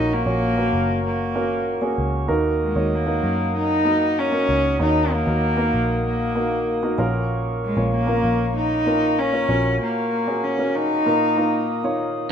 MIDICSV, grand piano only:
0, 0, Header, 1, 2, 480
1, 0, Start_track
1, 0, Key_signature, -6, "minor"
1, 0, Tempo, 625261
1, 1765, Time_signature, 4, 2, 24, 8
1, 9454, End_track
2, 0, Start_track
2, 0, Title_t, "Grand piano"
2, 0, Program_c, 0, 0
2, 0, Control_c, 0, 64, 127
2, 0, Note_on_c, 0, 46, 48
2, 0, Note_on_c, 0, 58, 61
2, 0, Note_on_c, 0, 61, 53
2, 0, Note_on_c, 0, 66, 61
2, 0, Note_on_c, 0, 70, 65
2, 103, Note_off_c, 0, 58, 0
2, 105, Note_off_c, 0, 61, 0
2, 106, Note_off_c, 0, 66, 0
2, 106, Note_off_c, 0, 70, 0
2, 198, Note_on_c, 0, 58, 59
2, 201, Note_on_c, 0, 61, 54
2, 201, Note_on_c, 0, 66, 51
2, 203, Note_on_c, 0, 73, 62
2, 297, Note_off_c, 0, 46, 0
2, 401, Note_off_c, 0, 58, 0
2, 402, Note_off_c, 0, 61, 0
2, 402, Note_off_c, 0, 66, 0
2, 403, Note_off_c, 0, 73, 0
2, 441, Note_on_c, 0, 61, 49
2, 442, Note_on_c, 0, 58, 64
2, 442, Note_on_c, 0, 66, 59
2, 445, Note_on_c, 0, 70, 64
2, 941, Note_off_c, 0, 58, 0
2, 941, Note_off_c, 0, 61, 0
2, 941, Note_off_c, 0, 66, 0
2, 943, Note_off_c, 0, 70, 0
2, 1039, Note_on_c, 0, 58, 65
2, 1039, Note_on_c, 0, 66, 58
2, 1040, Note_on_c, 0, 61, 53
2, 1041, Note_on_c, 0, 70, 68
2, 1341, Note_off_c, 0, 58, 0
2, 1341, Note_off_c, 0, 61, 0
2, 1341, Note_off_c, 0, 66, 0
2, 1342, Note_off_c, 0, 70, 0
2, 1394, Note_on_c, 0, 58, 60
2, 1398, Note_on_c, 0, 61, 64
2, 1399, Note_on_c, 0, 66, 54
2, 1402, Note_on_c, 0, 68, 70
2, 1698, Note_off_c, 0, 58, 0
2, 1700, Note_off_c, 0, 61, 0
2, 1700, Note_off_c, 0, 66, 0
2, 1702, Note_off_c, 0, 68, 0
2, 1750, Note_on_c, 0, 58, 67
2, 1753, Note_on_c, 0, 63, 57
2, 1753, Note_on_c, 0, 66, 64
2, 1753, Note_on_c, 0, 70, 80
2, 1754, Note_on_c, 0, 51, 58
2, 1773, Control_c, 0, 64, 0
2, 1895, Control_c, 0, 64, 127
2, 2056, Note_off_c, 0, 58, 0
2, 2058, Note_off_c, 0, 63, 0
2, 2058, Note_off_c, 0, 66, 0
2, 2058, Note_off_c, 0, 70, 0
2, 2114, Note_on_c, 0, 58, 53
2, 2115, Note_on_c, 0, 63, 57
2, 2118, Note_on_c, 0, 73, 66
2, 2120, Note_on_c, 0, 66, 51
2, 2319, Note_off_c, 0, 58, 0
2, 2319, Note_off_c, 0, 63, 0
2, 2320, Note_off_c, 0, 73, 0
2, 2322, Note_off_c, 0, 66, 0
2, 2354, Note_on_c, 0, 58, 58
2, 2355, Note_on_c, 0, 63, 54
2, 2358, Note_on_c, 0, 66, 50
2, 2361, Note_on_c, 0, 70, 60
2, 2449, Note_off_c, 0, 51, 0
2, 2857, Note_off_c, 0, 58, 0
2, 2858, Note_off_c, 0, 63, 0
2, 2859, Note_off_c, 0, 66, 0
2, 2861, Note_off_c, 0, 70, 0
2, 2955, Note_on_c, 0, 58, 65
2, 2956, Note_on_c, 0, 63, 53
2, 2957, Note_on_c, 0, 66, 55
2, 2960, Note_on_c, 0, 70, 69
2, 3259, Note_off_c, 0, 58, 0
2, 3259, Note_off_c, 0, 63, 0
2, 3260, Note_off_c, 0, 66, 0
2, 3261, Note_off_c, 0, 70, 0
2, 3314, Note_on_c, 0, 58, 49
2, 3318, Note_on_c, 0, 66, 55
2, 3319, Note_on_c, 0, 63, 51
2, 3322, Note_on_c, 0, 70, 56
2, 3618, Note_off_c, 0, 58, 0
2, 3620, Note_off_c, 0, 66, 0
2, 3621, Note_off_c, 0, 63, 0
2, 3622, Note_off_c, 0, 70, 0
2, 3680, Note_on_c, 0, 63, 59
2, 3681, Note_on_c, 0, 58, 59
2, 3682, Note_on_c, 0, 51, 51
2, 3684, Note_on_c, 0, 66, 51
2, 3684, Note_on_c, 0, 73, 64
2, 3981, Note_off_c, 0, 63, 0
2, 3982, Note_off_c, 0, 58, 0
2, 3983, Note_off_c, 0, 66, 0
2, 3983, Note_off_c, 0, 73, 0
2, 4037, Note_on_c, 0, 58, 54
2, 4039, Note_on_c, 0, 63, 50
2, 4042, Note_on_c, 0, 66, 54
2, 4043, Note_on_c, 0, 70, 61
2, 4240, Note_off_c, 0, 58, 0
2, 4241, Note_off_c, 0, 63, 0
2, 4243, Note_off_c, 0, 66, 0
2, 4243, Note_off_c, 0, 70, 0
2, 4277, Note_on_c, 0, 58, 61
2, 4278, Note_on_c, 0, 63, 55
2, 4281, Note_on_c, 0, 66, 55
2, 4282, Note_on_c, 0, 70, 71
2, 4373, Note_off_c, 0, 51, 0
2, 4779, Note_off_c, 0, 58, 0
2, 4779, Note_off_c, 0, 63, 0
2, 4781, Note_off_c, 0, 66, 0
2, 4781, Note_off_c, 0, 70, 0
2, 4878, Note_on_c, 0, 58, 65
2, 4880, Note_on_c, 0, 63, 57
2, 4883, Note_on_c, 0, 70, 64
2, 4884, Note_on_c, 0, 66, 58
2, 5180, Note_off_c, 0, 58, 0
2, 5181, Note_off_c, 0, 63, 0
2, 5183, Note_off_c, 0, 66, 0
2, 5183, Note_off_c, 0, 70, 0
2, 5242, Note_on_c, 0, 58, 74
2, 5242, Note_on_c, 0, 63, 59
2, 5243, Note_on_c, 0, 66, 57
2, 5248, Note_on_c, 0, 70, 72
2, 5349, Note_off_c, 0, 58, 0
2, 5355, Note_off_c, 0, 70, 0
2, 5360, Note_on_c, 0, 58, 83
2, 5362, Note_on_c, 0, 65, 67
2, 5363, Note_off_c, 0, 63, 0
2, 5363, Note_on_c, 0, 46, 62
2, 5364, Note_off_c, 0, 66, 0
2, 5364, Note_on_c, 0, 61, 65
2, 5367, Note_on_c, 0, 70, 85
2, 5374, Control_c, 0, 64, 0
2, 5524, Control_c, 0, 64, 127
2, 5861, Note_off_c, 0, 58, 0
2, 5861, Note_off_c, 0, 65, 0
2, 5862, Note_off_c, 0, 61, 0
2, 5864, Note_off_c, 0, 70, 0
2, 5963, Note_on_c, 0, 58, 57
2, 5964, Note_on_c, 0, 61, 49
2, 5964, Note_on_c, 0, 65, 51
2, 5967, Note_on_c, 0, 73, 64
2, 6054, Note_off_c, 0, 46, 0
2, 6163, Note_off_c, 0, 58, 0
2, 6164, Note_off_c, 0, 61, 0
2, 6164, Note_off_c, 0, 65, 0
2, 6165, Note_off_c, 0, 73, 0
2, 6195, Note_on_c, 0, 58, 65
2, 6199, Note_on_c, 0, 61, 54
2, 6201, Note_on_c, 0, 65, 55
2, 6202, Note_on_c, 0, 70, 65
2, 6698, Note_off_c, 0, 58, 0
2, 6700, Note_off_c, 0, 61, 0
2, 6701, Note_off_c, 0, 65, 0
2, 6702, Note_off_c, 0, 70, 0
2, 6803, Note_on_c, 0, 61, 54
2, 6805, Note_on_c, 0, 58, 61
2, 6807, Note_on_c, 0, 65, 52
2, 6807, Note_on_c, 0, 70, 68
2, 7103, Note_off_c, 0, 61, 0
2, 7104, Note_off_c, 0, 58, 0
2, 7105, Note_off_c, 0, 65, 0
2, 7105, Note_off_c, 0, 70, 0
2, 7162, Note_on_c, 0, 58, 49
2, 7164, Note_on_c, 0, 65, 48
2, 7166, Note_on_c, 0, 61, 49
2, 7168, Note_on_c, 0, 70, 59
2, 7271, Note_off_c, 0, 58, 0
2, 7273, Note_off_c, 0, 61, 0
2, 7276, Note_off_c, 0, 70, 0
2, 7282, Note_on_c, 0, 58, 59
2, 7284, Note_on_c, 0, 61, 55
2, 7285, Note_off_c, 0, 65, 0
2, 7285, Note_on_c, 0, 46, 53
2, 7286, Note_on_c, 0, 66, 53
2, 7288, Note_on_c, 0, 70, 67
2, 7296, Control_c, 0, 64, 0
2, 7416, Control_c, 0, 64, 127
2, 7782, Note_off_c, 0, 58, 0
2, 7783, Note_off_c, 0, 61, 0
2, 7783, Note_off_c, 0, 66, 0
2, 7784, Note_off_c, 0, 70, 0
2, 7888, Note_on_c, 0, 58, 58
2, 7889, Note_on_c, 0, 61, 54
2, 7890, Note_on_c, 0, 66, 51
2, 7892, Note_on_c, 0, 68, 69
2, 7974, Note_off_c, 0, 46, 0
2, 8086, Note_off_c, 0, 58, 0
2, 8086, Note_off_c, 0, 61, 0
2, 8087, Note_off_c, 0, 66, 0
2, 8088, Note_off_c, 0, 68, 0
2, 8127, Note_on_c, 0, 58, 58
2, 8127, Note_on_c, 0, 61, 51
2, 8129, Note_on_c, 0, 66, 53
2, 8131, Note_on_c, 0, 70, 61
2, 8479, Note_off_c, 0, 58, 0
2, 8485, Note_off_c, 0, 70, 0
2, 8486, Note_off_c, 0, 61, 0
2, 8487, Note_off_c, 0, 66, 0
2, 8490, Note_on_c, 0, 58, 64
2, 8490, Note_on_c, 0, 65, 53
2, 8491, Note_on_c, 0, 46, 51
2, 8492, Note_on_c, 0, 63, 54
2, 8497, Control_c, 0, 64, 0
2, 8497, Note_on_c, 0, 70, 72
2, 8618, Control_c, 0, 64, 127
2, 8687, Note_off_c, 0, 58, 0
2, 8687, Note_off_c, 0, 65, 0
2, 8688, Note_off_c, 0, 63, 0
2, 8690, Note_off_c, 0, 70, 0
2, 8729, Note_on_c, 0, 58, 65
2, 8731, Note_on_c, 0, 63, 57
2, 8732, Note_on_c, 0, 65, 57
2, 8735, Note_on_c, 0, 70, 71
2, 9026, Note_off_c, 0, 58, 0
2, 9027, Note_off_c, 0, 63, 0
2, 9028, Note_off_c, 0, 65, 0
2, 9029, Note_off_c, 0, 70, 0
2, 9090, Note_on_c, 0, 58, 62
2, 9091, Note_on_c, 0, 63, 59
2, 9092, Note_on_c, 0, 65, 57
2, 9094, Note_on_c, 0, 73, 75
2, 9178, Note_off_c, 0, 46, 0
2, 9386, Note_off_c, 0, 58, 0
2, 9387, Note_off_c, 0, 63, 0
2, 9387, Note_off_c, 0, 65, 0
2, 9388, Note_off_c, 0, 73, 0
2, 9454, End_track
0, 0, End_of_file